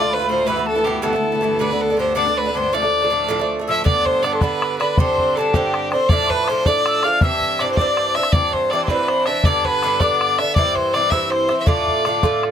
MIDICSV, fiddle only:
0, 0, Header, 1, 2, 480
1, 0, Start_track
1, 0, Tempo, 372902
1, 619, Time_signature, 6, 3, 24, 8
1, 16103, End_track
2, 0, Start_track
2, 0, Title_t, "Fiddle"
2, 0, Program_c, 0, 110
2, 0, Note_on_c, 0, 74, 76
2, 168, Note_on_c, 0, 71, 88
2, 188, Note_off_c, 0, 74, 0
2, 380, Note_off_c, 0, 71, 0
2, 387, Note_on_c, 0, 72, 86
2, 597, Note_on_c, 0, 71, 77
2, 616, Note_off_c, 0, 72, 0
2, 861, Note_off_c, 0, 71, 0
2, 869, Note_on_c, 0, 69, 82
2, 1088, Note_on_c, 0, 67, 83
2, 1107, Note_off_c, 0, 69, 0
2, 1322, Note_off_c, 0, 67, 0
2, 1330, Note_on_c, 0, 69, 76
2, 2066, Note_on_c, 0, 71, 82
2, 2086, Note_off_c, 0, 69, 0
2, 2331, Note_on_c, 0, 69, 87
2, 2350, Note_off_c, 0, 71, 0
2, 2551, Note_off_c, 0, 69, 0
2, 2558, Note_on_c, 0, 72, 88
2, 2774, Note_off_c, 0, 72, 0
2, 2797, Note_on_c, 0, 74, 86
2, 3058, Note_on_c, 0, 71, 79
2, 3078, Note_off_c, 0, 74, 0
2, 3292, Note_on_c, 0, 72, 86
2, 3311, Note_off_c, 0, 71, 0
2, 3518, Note_on_c, 0, 74, 79
2, 3538, Note_off_c, 0, 72, 0
2, 4505, Note_off_c, 0, 74, 0
2, 4772, Note_on_c, 0, 76, 85
2, 4953, Note_off_c, 0, 76, 0
2, 4961, Note_on_c, 0, 74, 89
2, 5214, Note_on_c, 0, 72, 93
2, 5233, Note_off_c, 0, 74, 0
2, 5441, Note_on_c, 0, 74, 83
2, 5460, Note_off_c, 0, 72, 0
2, 5567, Note_on_c, 0, 69, 74
2, 5586, Note_off_c, 0, 74, 0
2, 5668, Note_on_c, 0, 71, 77
2, 5688, Note_off_c, 0, 69, 0
2, 6146, Note_off_c, 0, 71, 0
2, 6154, Note_on_c, 0, 71, 78
2, 6404, Note_on_c, 0, 72, 93
2, 6424, Note_off_c, 0, 71, 0
2, 6891, Note_on_c, 0, 69, 84
2, 6910, Note_off_c, 0, 72, 0
2, 7121, Note_on_c, 0, 67, 72
2, 7141, Note_off_c, 0, 69, 0
2, 7608, Note_off_c, 0, 67, 0
2, 7616, Note_on_c, 0, 72, 92
2, 7832, Note_on_c, 0, 74, 101
2, 7852, Note_off_c, 0, 72, 0
2, 8101, Note_on_c, 0, 71, 100
2, 8120, Note_off_c, 0, 74, 0
2, 8340, Note_on_c, 0, 72, 101
2, 8360, Note_off_c, 0, 71, 0
2, 8574, Note_on_c, 0, 74, 92
2, 8593, Note_off_c, 0, 72, 0
2, 9064, Note_on_c, 0, 77, 86
2, 9083, Note_off_c, 0, 74, 0
2, 9288, Note_off_c, 0, 77, 0
2, 9304, Note_on_c, 0, 76, 97
2, 9782, Note_on_c, 0, 74, 86
2, 9802, Note_off_c, 0, 76, 0
2, 9920, Note_off_c, 0, 74, 0
2, 9926, Note_on_c, 0, 72, 77
2, 9997, Note_on_c, 0, 74, 83
2, 10017, Note_off_c, 0, 72, 0
2, 10489, Note_on_c, 0, 76, 96
2, 10508, Note_off_c, 0, 74, 0
2, 10714, Note_on_c, 0, 74, 85
2, 10734, Note_off_c, 0, 76, 0
2, 10979, Note_on_c, 0, 72, 90
2, 10999, Note_off_c, 0, 74, 0
2, 11199, Note_on_c, 0, 74, 89
2, 11218, Note_off_c, 0, 72, 0
2, 11375, Note_off_c, 0, 74, 0
2, 11385, Note_on_c, 0, 72, 76
2, 11431, Note_on_c, 0, 71, 90
2, 11450, Note_off_c, 0, 72, 0
2, 11693, Note_on_c, 0, 72, 90
2, 11713, Note_off_c, 0, 71, 0
2, 11918, Note_on_c, 0, 76, 92
2, 11937, Note_off_c, 0, 72, 0
2, 12164, Note_on_c, 0, 74, 86
2, 12183, Note_off_c, 0, 76, 0
2, 12415, Note_on_c, 0, 71, 96
2, 12435, Note_off_c, 0, 74, 0
2, 12867, Note_on_c, 0, 74, 79
2, 12886, Note_off_c, 0, 71, 0
2, 13366, Note_on_c, 0, 76, 90
2, 13385, Note_off_c, 0, 74, 0
2, 13577, Note_off_c, 0, 76, 0
2, 13585, Note_on_c, 0, 74, 84
2, 13841, Note_on_c, 0, 72, 89
2, 13860, Note_off_c, 0, 74, 0
2, 14073, Note_on_c, 0, 74, 93
2, 14093, Note_off_c, 0, 72, 0
2, 14289, Note_on_c, 0, 76, 85
2, 14308, Note_off_c, 0, 74, 0
2, 14551, Note_on_c, 0, 72, 90
2, 14570, Note_off_c, 0, 76, 0
2, 14924, Note_off_c, 0, 72, 0
2, 14932, Note_on_c, 0, 76, 60
2, 15025, Note_on_c, 0, 74, 77
2, 15045, Note_off_c, 0, 76, 0
2, 16002, Note_off_c, 0, 74, 0
2, 16103, End_track
0, 0, End_of_file